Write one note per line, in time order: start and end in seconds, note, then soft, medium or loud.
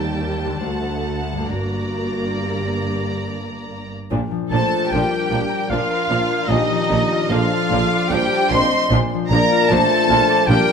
0.00 0.64 D#2 soft
0.00 0.58 D#3 soft
0.00 0.60 G3 soft
0.00 0.65 G3 soft
0.00 0.63 A#3 soft
0.00 0.24 D#4 medium
0.00 0.65 G4 soft
0.00 0.63 G5 soft
0.00 1.47 A5 soft
0.23 0.67 G4 soft
0.46 1.45 D3 soft
0.50 1.47 A3 soft
0.55 1.40 D4 soft
0.59 1.52 C5 soft
0.64 1.49 D2 soft
0.64 1.51 A3 soft
0.64 1.20 F#4 medium
0.64 1.49 F#5 soft
1.32 4.06 G2 soft
1.37 4.49 A#3 soft
1.41 4.69 D4 soft
1.46 4.88 A#4 soft
1.50 3.91 G1 soft
1.50 3.91 G2 soft
1.50 3.91 A#3 soft
1.50 2.42 F#4 medium
1.50 3.91 D5 soft
1.50 3.92 A#5 soft
2.40 3.27 G4 soft
4.11 4.27 A#1 soft
4.11 4.20 A#1 medium
4.11 6.48 A#2 soft
4.11 4.19 A#2 medium
4.11 4.20 F3 soft
4.11 8.89 F3 soft
4.11 4.19 D4 soft
4.11 8.89 D4 soft
4.31 6.69 F3 soft
4.50 4.67 A#1 soft
4.50 4.60 A#1 soft
4.50 4.61 A#2 medium
4.50 4.60 F3 soft
4.50 4.91 A3 medium
4.50 6.29 A#3 soft
4.50 4.61 D4 soft
4.50 4.89 A4 medium
4.50 4.94 C5 medium
4.50 4.94 A5 medium
4.50 4.90 A5 medium
4.70 5.09 D4 soft
4.90 5.07 A#1 soft
4.90 5.00 A#1 soft
4.90 5.00 A#2 medium
4.90 5.71 G3 medium
4.90 5.71 G4 soft
4.90 5.89 A#4 soft
4.90 5.71 A#4 soft
4.90 5.71 G5 medium
4.90 5.71 G5 soft
4.94 5.02 F3 soft
4.94 5.02 D4 soft
5.10 6.08 D4 soft
5.30 5.47 A#1 soft
5.30 5.39 A#1 soft
5.30 5.39 A#2 medium
5.30 5.41 F3 soft
5.30 5.41 D4 soft
5.30 5.69 D5 soft
5.49 6.52 A#5 soft
5.69 5.85 A#1 medium
5.69 5.79 A#1 medium
5.69 5.78 A#2 medium
5.69 6.50 F3 medium
5.69 5.80 F3 soft
5.69 5.80 D4 soft
5.69 6.48 F4 medium
5.69 6.49 A#4 medium
5.69 7.31 D5 soft
5.69 6.50 F5 medium
5.69 6.48 F5 medium
5.90 6.53 A#4 soft
6.09 6.25 A#1 soft
6.09 6.18 A#1 soft
6.09 6.17 A#2 medium
6.09 6.18 F3 soft
6.09 10.00 D4 soft
6.09 6.18 D4 soft
6.30 6.53 A#3 soft
6.48 6.64 A#1 medium
6.48 6.58 A#1 medium
6.48 6.57 A#2 medium
6.48 8.92 A#2 medium
6.48 7.32 D#3 medium
6.48 6.59 F3 medium
6.48 6.58 D4 medium
6.48 7.32 D#4 medium
6.48 7.34 G4 medium
6.48 7.30 D#5 medium
6.48 7.31 D#5 medium
6.70 9.12 F3 soft
6.90 7.06 A#1 medium
6.90 6.99 A#1 medium
6.90 6.98 A#2 medium
6.90 6.98 F3 soft
6.90 8.72 A3 soft
6.90 6.98 D4 soft
7.12 9.51 F4 soft
7.30 7.47 A#1 medium
7.30 7.40 A#1 medium
7.30 7.38 A#2 medium
7.30 7.39 F3 medium
7.30 8.11 F3 medium
7.30 7.39 D4 medium
7.30 8.13 F4 medium
7.30 8.10 A4 medium
7.30 8.52 D5 soft
7.30 8.11 F5 medium
7.30 8.13 F5 medium
7.53 8.31 A4 soft
7.70 7.87 A#1 medium
7.70 7.80 A#1 medium
7.70 7.78 A#2 medium
7.70 7.81 F3 soft
7.70 7.80 D4 soft
7.70 8.12 F5 medium
7.92 10.28 D6 medium
8.09 8.26 A#1 medium
8.09 8.20 A#1 medium
8.09 8.17 A#2 medium
8.09 8.19 F3 medium
8.09 8.51 G3 medium
8.09 8.19 D4 medium
8.09 8.52 G4 medium
8.09 8.54 C5 medium
8.09 10.08 F5 medium
8.09 8.51 G5 medium
8.09 8.54 G5 medium
8.33 8.95 A4 soft
8.49 8.67 A#1 medium
8.49 8.59 A#1 medium
8.49 8.57 A#2 medium
8.49 8.91 C4 medium
8.49 8.92 D#5 medium
8.49 8.91 C6 medium
8.49 8.92 C6 medium
8.53 8.61 F3 soft
8.53 8.62 D4 medium
8.53 8.92 C5 medium
8.53 9.71 D5 medium
8.73 8.95 A3 soft
8.89 9.07 A#1 medium
8.89 8.99 A#1 medium
8.89 8.97 A#2 medium
8.89 8.99 F3 medium
8.89 10.72 F3 medium
8.89 8.99 D4 medium
8.89 10.72 D4 medium
8.94 10.72 A#2 medium
9.14 10.72 F3 soft
9.28 9.45 A#1 medium
9.28 9.39 A#1 medium
9.28 9.38 A#2 medium
9.28 9.39 F3 medium
9.28 9.67 A#3 medium
9.28 9.39 D4 medium
9.28 9.67 A#4 medium
9.28 9.74 D5 medium
9.28 9.66 A#5 medium
9.28 9.69 A#5 medium
9.32 10.72 A#3 medium
9.52 10.72 F4 medium
9.67 9.85 A#1 medium
9.67 9.79 A#1 medium
9.67 9.77 A#2 medium
9.67 9.78 F3 medium
9.67 9.78 D4 medium
9.67 10.49 A4 medium
9.67 10.47 A5 loud
9.67 10.48 A5 medium
9.71 10.49 A3 medium
9.71 10.52 C5 medium
9.71 10.72 D5 soft
9.91 10.68 A#4 medium
10.08 10.24 A#1 medium
10.08 10.18 A#1 medium
10.08 10.16 A#2 medium
10.08 10.19 F3 medium
10.08 10.19 D4 medium
10.08 10.49 F5 medium
10.29 10.72 D6 medium
10.46 10.63 A#1 medium
10.46 10.56 A#1 medium
10.46 10.57 A#2 medium
10.46 10.57 F3 medium
10.46 10.72 G3 medium
10.46 10.57 D4 medium
10.46 10.72 G4 medium
10.46 10.72 F5 medium
10.46 10.72 G5 medium
10.46 10.72 G5 loud
10.50 10.72 A#4 medium
10.69 10.72 A#4 medium